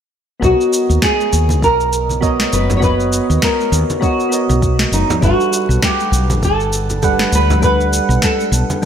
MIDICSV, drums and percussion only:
0, 0, Header, 1, 2, 480
1, 0, Start_track
1, 0, Tempo, 600000
1, 340, Time_signature, 4, 2, 24, 8
1, 7081, End_track
2, 0, Start_track
2, 0, Title_t, "Drums"
2, 341, Note_on_c, 9, 36, 94
2, 346, Note_on_c, 9, 82, 41
2, 421, Note_off_c, 9, 36, 0
2, 426, Note_off_c, 9, 82, 0
2, 486, Note_on_c, 9, 82, 20
2, 566, Note_off_c, 9, 82, 0
2, 584, Note_on_c, 9, 82, 74
2, 664, Note_off_c, 9, 82, 0
2, 723, Note_on_c, 9, 82, 30
2, 803, Note_off_c, 9, 82, 0
2, 817, Note_on_c, 9, 38, 80
2, 821, Note_on_c, 9, 36, 99
2, 823, Note_on_c, 9, 82, 42
2, 897, Note_off_c, 9, 38, 0
2, 901, Note_off_c, 9, 36, 0
2, 903, Note_off_c, 9, 82, 0
2, 964, Note_on_c, 9, 82, 21
2, 1044, Note_off_c, 9, 82, 0
2, 1064, Note_on_c, 9, 82, 69
2, 1144, Note_off_c, 9, 82, 0
2, 1192, Note_on_c, 9, 63, 82
2, 1204, Note_on_c, 9, 82, 32
2, 1272, Note_off_c, 9, 63, 0
2, 1284, Note_off_c, 9, 82, 0
2, 1299, Note_on_c, 9, 36, 87
2, 1306, Note_on_c, 9, 82, 37
2, 1379, Note_off_c, 9, 36, 0
2, 1386, Note_off_c, 9, 82, 0
2, 1443, Note_on_c, 9, 82, 21
2, 1523, Note_off_c, 9, 82, 0
2, 1543, Note_on_c, 9, 82, 67
2, 1623, Note_off_c, 9, 82, 0
2, 1675, Note_on_c, 9, 63, 60
2, 1682, Note_on_c, 9, 82, 32
2, 1755, Note_off_c, 9, 63, 0
2, 1762, Note_off_c, 9, 82, 0
2, 1780, Note_on_c, 9, 36, 94
2, 1784, Note_on_c, 9, 82, 39
2, 1860, Note_off_c, 9, 36, 0
2, 1864, Note_off_c, 9, 82, 0
2, 1918, Note_on_c, 9, 38, 71
2, 1923, Note_on_c, 9, 82, 20
2, 1998, Note_off_c, 9, 38, 0
2, 2003, Note_off_c, 9, 82, 0
2, 2023, Note_on_c, 9, 82, 74
2, 2103, Note_off_c, 9, 82, 0
2, 2158, Note_on_c, 9, 64, 87
2, 2163, Note_on_c, 9, 82, 32
2, 2238, Note_off_c, 9, 64, 0
2, 2243, Note_off_c, 9, 82, 0
2, 2259, Note_on_c, 9, 36, 102
2, 2261, Note_on_c, 9, 82, 42
2, 2339, Note_off_c, 9, 36, 0
2, 2341, Note_off_c, 9, 82, 0
2, 2401, Note_on_c, 9, 82, 20
2, 2481, Note_off_c, 9, 82, 0
2, 2503, Note_on_c, 9, 82, 80
2, 2583, Note_off_c, 9, 82, 0
2, 2644, Note_on_c, 9, 82, 31
2, 2724, Note_off_c, 9, 82, 0
2, 2738, Note_on_c, 9, 38, 77
2, 2739, Note_on_c, 9, 36, 101
2, 2743, Note_on_c, 9, 82, 46
2, 2818, Note_off_c, 9, 38, 0
2, 2819, Note_off_c, 9, 36, 0
2, 2823, Note_off_c, 9, 82, 0
2, 2884, Note_on_c, 9, 82, 21
2, 2964, Note_off_c, 9, 82, 0
2, 2983, Note_on_c, 9, 82, 73
2, 3063, Note_off_c, 9, 82, 0
2, 3119, Note_on_c, 9, 82, 35
2, 3120, Note_on_c, 9, 63, 80
2, 3199, Note_off_c, 9, 82, 0
2, 3200, Note_off_c, 9, 63, 0
2, 3219, Note_on_c, 9, 36, 96
2, 3223, Note_on_c, 9, 82, 40
2, 3299, Note_off_c, 9, 36, 0
2, 3303, Note_off_c, 9, 82, 0
2, 3360, Note_on_c, 9, 82, 20
2, 3440, Note_off_c, 9, 82, 0
2, 3460, Note_on_c, 9, 82, 67
2, 3540, Note_off_c, 9, 82, 0
2, 3595, Note_on_c, 9, 63, 67
2, 3600, Note_on_c, 9, 82, 34
2, 3675, Note_off_c, 9, 63, 0
2, 3680, Note_off_c, 9, 82, 0
2, 3699, Note_on_c, 9, 36, 91
2, 3702, Note_on_c, 9, 82, 43
2, 3779, Note_off_c, 9, 36, 0
2, 3782, Note_off_c, 9, 82, 0
2, 3834, Note_on_c, 9, 38, 72
2, 3840, Note_on_c, 9, 82, 20
2, 3914, Note_off_c, 9, 38, 0
2, 3920, Note_off_c, 9, 82, 0
2, 3943, Note_on_c, 9, 82, 69
2, 4023, Note_off_c, 9, 82, 0
2, 4082, Note_on_c, 9, 64, 94
2, 4082, Note_on_c, 9, 82, 35
2, 4162, Note_off_c, 9, 64, 0
2, 4162, Note_off_c, 9, 82, 0
2, 4180, Note_on_c, 9, 36, 97
2, 4182, Note_on_c, 9, 82, 40
2, 4260, Note_off_c, 9, 36, 0
2, 4262, Note_off_c, 9, 82, 0
2, 4324, Note_on_c, 9, 82, 21
2, 4404, Note_off_c, 9, 82, 0
2, 4425, Note_on_c, 9, 82, 78
2, 4505, Note_off_c, 9, 82, 0
2, 4565, Note_on_c, 9, 82, 33
2, 4645, Note_off_c, 9, 82, 0
2, 4660, Note_on_c, 9, 38, 73
2, 4661, Note_on_c, 9, 36, 99
2, 4665, Note_on_c, 9, 82, 45
2, 4740, Note_off_c, 9, 38, 0
2, 4741, Note_off_c, 9, 36, 0
2, 4745, Note_off_c, 9, 82, 0
2, 4801, Note_on_c, 9, 82, 23
2, 4881, Note_off_c, 9, 82, 0
2, 4905, Note_on_c, 9, 82, 73
2, 4985, Note_off_c, 9, 82, 0
2, 5038, Note_on_c, 9, 63, 89
2, 5042, Note_on_c, 9, 82, 35
2, 5118, Note_off_c, 9, 63, 0
2, 5122, Note_off_c, 9, 82, 0
2, 5142, Note_on_c, 9, 36, 94
2, 5144, Note_on_c, 9, 82, 43
2, 5222, Note_off_c, 9, 36, 0
2, 5224, Note_off_c, 9, 82, 0
2, 5281, Note_on_c, 9, 82, 20
2, 5361, Note_off_c, 9, 82, 0
2, 5383, Note_on_c, 9, 82, 70
2, 5463, Note_off_c, 9, 82, 0
2, 5519, Note_on_c, 9, 82, 35
2, 5520, Note_on_c, 9, 63, 65
2, 5599, Note_off_c, 9, 82, 0
2, 5600, Note_off_c, 9, 63, 0
2, 5621, Note_on_c, 9, 82, 43
2, 5623, Note_on_c, 9, 36, 100
2, 5701, Note_off_c, 9, 82, 0
2, 5703, Note_off_c, 9, 36, 0
2, 5755, Note_on_c, 9, 38, 65
2, 5761, Note_on_c, 9, 82, 20
2, 5835, Note_off_c, 9, 38, 0
2, 5841, Note_off_c, 9, 82, 0
2, 5862, Note_on_c, 9, 82, 74
2, 5942, Note_off_c, 9, 82, 0
2, 6002, Note_on_c, 9, 64, 87
2, 6003, Note_on_c, 9, 82, 32
2, 6082, Note_off_c, 9, 64, 0
2, 6083, Note_off_c, 9, 82, 0
2, 6103, Note_on_c, 9, 82, 43
2, 6104, Note_on_c, 9, 36, 103
2, 6183, Note_off_c, 9, 82, 0
2, 6184, Note_off_c, 9, 36, 0
2, 6244, Note_on_c, 9, 82, 20
2, 6324, Note_off_c, 9, 82, 0
2, 6345, Note_on_c, 9, 82, 78
2, 6425, Note_off_c, 9, 82, 0
2, 6483, Note_on_c, 9, 82, 31
2, 6563, Note_off_c, 9, 82, 0
2, 6577, Note_on_c, 9, 38, 72
2, 6582, Note_on_c, 9, 82, 45
2, 6585, Note_on_c, 9, 36, 91
2, 6657, Note_off_c, 9, 38, 0
2, 6662, Note_off_c, 9, 82, 0
2, 6665, Note_off_c, 9, 36, 0
2, 6722, Note_on_c, 9, 82, 21
2, 6802, Note_off_c, 9, 82, 0
2, 6823, Note_on_c, 9, 82, 75
2, 6903, Note_off_c, 9, 82, 0
2, 6959, Note_on_c, 9, 63, 89
2, 6961, Note_on_c, 9, 82, 33
2, 7039, Note_off_c, 9, 63, 0
2, 7041, Note_off_c, 9, 82, 0
2, 7081, End_track
0, 0, End_of_file